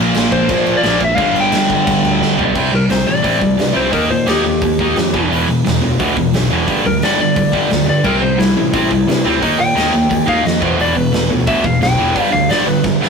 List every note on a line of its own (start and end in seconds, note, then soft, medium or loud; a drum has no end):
0.00 0.13 A#1 loud
0.00 0.81 A#2 medium
0.00 0.83 F3 loud
0.00 0.84 A#3 loud
0.14 0.31 A#1 loud
0.14 snare loud
0.14 crash medium
0.32 0.47 A#1 medium
0.32 0.77 C5 medium
0.32 kick medium
0.32 crash medium
0.49 0.80 A#2 loud
0.49 kick loud
0.49 crash medium
0.66 crash medium
0.77 1.03 D5 loud
0.82 1.14 A#1 medium
0.82 1.00 A#2 medium
0.82 1.01 F3 medium
0.82 1.01 A#3 medium
0.82 snare loud
0.82 crash medium
1.00 kick medium
1.00 crash medium
1.04 1.15 E5 loud
1.15 1.33 G1 loud
1.15 2.37 G2 loud
1.15 2.37 D3 loud
1.15 1.39 F5 loud
1.15 kick loud
1.15 crash medium
1.19 2.36 G3 loud
1.34 1.50 G1 medium
1.34 crash medium
1.40 2.37 G5 loud
1.52 1.68 G1 loud
1.52 snare loud
1.52 crash loud
1.70 1.85 G1 medium
1.70 kick medium
1.70 crash medium
1.87 2.02 G1 loud
1.87 kick loud
1.87 crash medium
2.03 2.19 D2 loud
2.03 crash medium
2.20 2.36 G1 medium
2.20 snare medium
2.37 2.53 B1 medium
2.37 2.56 G2 medium
2.37 2.55 D3 medium
2.37 2.54 G3 loud
2.37 floor tom medium
2.55 2.71 C2 medium
2.55 2.71 C3 loud
2.55 2.71 G3 medium
2.55 2.73 C4 medium
2.55 kick loud
2.55 crash loud
2.72 2.88 C2 loud
2.72 2.88 C3 medium
2.72 2.88 G3 medium
2.72 2.90 A#4 medium
2.89 3.05 C2 medium
2.89 3.06 C3 medium
2.89 3.06 G3 medium
2.89 3.07 C5 medium
2.89 snare loud
2.89 open hi-hat medium
3.07 3.23 A1 medium
3.07 3.21 C3 medium
3.07 3.22 G3 medium
3.07 3.74 D5 loud
3.23 3.40 A1 medium
3.23 3.39 C3 loud
3.23 3.40 G3 loud
3.23 3.41 C4 loud
3.23 kick loud
3.23 open hi-hat medium
3.40 3.57 C2 medium
3.40 3.57 C3 medium
3.40 3.57 G3 medium
3.40 kick medium
3.58 3.74 G2 medium
3.58 3.72 C3 medium
3.58 3.73 G3 medium
3.58 snare loud
3.58 open hi-hat medium
3.73 3.92 C2 medium
3.73 3.91 C3 medium
3.73 3.91 G3 medium
3.73 3.92 C4 loud
3.73 3.93 C5 medium
3.91 4.08 D#2 medium
3.91 4.09 D#3 medium
3.91 4.09 A#3 medium
3.91 4.09 D#4 medium
3.91 4.10 A#4 medium
3.91 kick loud
3.91 open hi-hat medium
4.10 4.26 A#2 medium
4.10 4.25 D#3 medium
4.10 4.25 A#3 medium
4.10 4.27 C5 medium
4.26 4.42 D#2 loud
4.26 4.43 D#3 medium
4.26 4.43 A#3 medium
4.26 4.44 D#4 medium
4.26 5.29 G4 medium
4.26 snare loud
4.26 open hi-hat medium
4.45 4.60 D#2 medium
4.45 4.61 D#3 medium
4.45 4.61 A#3 medium
4.62 4.92 D#2 medium
4.62 4.78 D#3 medium
4.62 4.78 A#3 medium
4.62 kick loud
4.62 open hi-hat medium
4.79 4.96 D#3 medium
4.79 4.96 A#3 medium
4.79 4.97 D#4 loud
4.79 kick medium
4.96 5.11 F2 medium
4.96 5.13 D#3 medium
4.96 5.13 A#3 medium
4.96 snare loud
4.96 open hi-hat medium
5.13 5.29 E1 medium
5.13 5.29 E2 loud
5.13 5.30 B2 loud
5.13 5.30 E3 loud
5.13 kick loud
5.30 5.46 E1 medium
5.30 5.46 E2 medium
5.30 5.47 B2 medium
5.30 5.48 E3 loud
5.30 open hi-hat medium
5.47 5.64 E1 medium
5.47 5.63 E2 medium
5.47 5.63 B2 medium
5.64 5.81 E1 medium
5.64 5.80 E2 medium
5.64 5.80 B2 medium
5.64 snare loud
5.64 open hi-hat medium
5.81 5.97 D2 medium
5.81 5.97 E2 medium
5.81 5.97 B2 medium
5.99 6.15 D2 medium
5.99 6.16 E2 medium
5.99 6.16 B2 loud
5.99 6.16 E3 loud
5.99 kick loud
5.99 open hi-hat medium
6.17 6.32 E1 medium
6.17 6.32 E2 medium
6.17 6.33 B2 medium
6.17 kick medium
6.33 6.49 B1 medium
6.33 6.49 E2 medium
6.33 6.50 B2 loud
6.33 snare loud
6.33 open hi-hat medium
6.50 6.66 E1 medium
6.50 6.67 E2 medium
6.50 6.67 B2 loud
6.50 6.68 E3 loud
6.68 6.83 G1 medium
6.68 6.84 G2 medium
6.68 6.84 D3 loud
6.68 6.85 G3 medium
6.68 kick loud
6.68 open hi-hat medium
6.85 7.00 D2 loud
6.85 7.01 G2 medium
6.85 7.01 D3 medium
6.85 7.03 A#4 medium
7.02 7.17 G1 medium
7.02 7.18 G2 medium
7.02 7.18 D3 medium
7.02 7.19 G3 loud
7.02 7.19 D5 medium
7.02 snare loud
7.02 open hi-hat medium
7.19 7.34 G1 medium
7.19 7.35 G2 medium
7.19 7.34 D3 medium
7.19 7.87 D5 loud
7.36 7.67 G1 medium
7.36 7.51 G2 medium
7.36 7.51 D3 medium
7.36 kick loud
7.36 open hi-hat medium
7.52 7.68 G2 medium
7.52 7.68 D3 medium
7.52 7.69 G3 loud
7.52 kick medium
7.69 7.86 D2 medium
7.69 7.84 G2 medium
7.69 7.85 D3 medium
7.69 snare loud
7.69 open hi-hat medium
7.86 8.02 G2 medium
7.86 8.04 G2 medium
7.86 8.03 D3 medium
7.86 8.05 D5 medium
8.04 8.20 C2 medium
8.04 8.20 C3 medium
8.04 8.20 G3 medium
8.04 8.21 C4 loud
8.04 8.21 A#4 medium
8.04 kick loud
8.04 crash medium
8.21 8.38 C2 medium
8.21 8.36 C3 medium
8.21 8.37 G3 medium
8.21 8.39 C5 medium
8.38 8.55 C2 medium
8.38 8.54 C3 medium
8.38 8.54 G3 medium
8.38 9.39 E4 medium
8.38 snare loud
8.38 open hi-hat medium
8.57 8.72 A1 medium
8.57 8.71 C3 medium
8.57 8.72 G3 medium
8.72 8.88 A1 medium
8.72 8.89 C3 medium
8.72 8.90 G3 loud
8.72 8.90 C4 loud
8.72 kick loud
8.72 open hi-hat medium
8.91 9.06 C2 loud
8.91 9.06 C3 medium
8.91 9.06 G3 medium
8.91 kick medium
9.07 9.23 G2 medium
9.07 9.23 C3 medium
9.07 9.23 G3 medium
9.07 snare loud
9.07 open hi-hat medium
9.24 9.40 D2 medium
9.24 9.41 C3 medium
9.24 9.41 G3 medium
9.24 9.41 C4 loud
9.41 9.57 D#2 medium
9.41 9.57 D#3 medium
9.41 9.58 A#3 medium
9.41 9.59 D#4 loud
9.41 kick medium
9.41 open hi-hat medium
9.59 9.74 A#2 medium
9.59 9.74 D#3 medium
9.59 9.74 A#3 medium
9.59 10.26 G5 loud
9.75 9.91 D#2 medium
9.75 9.92 D#3 medium
9.75 9.92 A#3 loud
9.75 9.93 D#4 loud
9.75 snare loud
9.75 open hi-hat medium
9.93 10.08 D#2 medium
9.93 10.08 D#3 medium
9.93 10.08 A#3 medium
10.10 10.41 D#2 loud
10.10 10.25 D#3 medium
10.10 10.26 A#3 medium
10.10 kick loud
10.10 open hi-hat medium
10.26 10.43 D#3 medium
10.26 10.44 A#3 loud
10.26 10.44 D#4 loud
10.26 10.46 F5 loud
10.26 kick medium
10.44 10.60 F2 medium
10.44 10.60 D#3 medium
10.44 10.60 A#3 medium
10.44 10.63 D#5 medium
10.44 snare medium
10.44 open hi-hat medium
10.60 10.77 E1 loud
10.60 10.76 E2 loud
10.60 10.76 B2 loud
10.60 10.77 E3 loud
10.60 10.79 C5 medium
10.60 kick loud
10.77 10.94 E1 medium
10.77 10.93 E2 loud
10.77 10.94 B2 loud
10.77 10.95 E3 loud
10.77 open hi-hat medium
10.81 10.97 D5 medium
10.95 11.11 E1 loud
10.95 11.11 E2 medium
10.95 11.11 B2 medium
10.95 11.30 B4 loud
11.13 11.28 E1 medium
11.13 11.29 E2 medium
11.13 11.29 B2 medium
11.13 snare loud
11.13 open hi-hat medium
11.30 11.46 D2 medium
11.30 11.46 E2 medium
11.30 11.46 B2 medium
11.47 11.63 D2 medium
11.47 11.63 E2 medium
11.47 11.63 B2 loud
11.47 11.64 E3 loud
11.47 11.65 E5 loud
11.47 kick loud
11.47 open hi-hat medium
11.64 11.80 E1 medium
11.64 11.80 E2 medium
11.64 11.80 B2 medium
11.64 11.82 F5 medium
11.64 kick medium
11.81 11.97 B1 medium
11.81 11.96 E2 medium
11.81 11.97 B2 loud
11.81 12.32 G5 medium
11.81 snare loud
11.81 open hi-hat medium
11.98 12.15 E1 medium
11.98 12.13 E2 loud
11.98 12.15 B2 loud
11.98 12.15 E3 loud
12.14 12.31 G1 medium
12.14 12.30 G2 medium
12.14 12.30 D3 medium
12.14 12.32 G3 loud
12.14 kick loud
12.14 open hi-hat medium
12.31 12.48 D2 loud
12.31 12.48 G2 medium
12.31 12.48 D3 medium
12.31 12.50 F5 loud
12.49 12.65 G1 medium
12.49 12.66 G2 medium
12.49 12.66 D3 loud
12.49 12.67 G3 loud
12.49 12.67 D5 loud
12.49 snare loud
12.49 open hi-hat medium
12.67 12.82 G1 medium
12.67 12.83 G2 medium
12.67 12.83 D3 medium
12.67 12.84 B4 medium
12.84 13.09 G1 loud
12.84 13.00 G2 medium
12.84 13.00 D3 medium
12.84 kick loud
12.84 snare medium
13.01 13.09 G2 loud
13.01 13.09 D3 medium
13.01 13.09 G3 loud
13.01 snare medium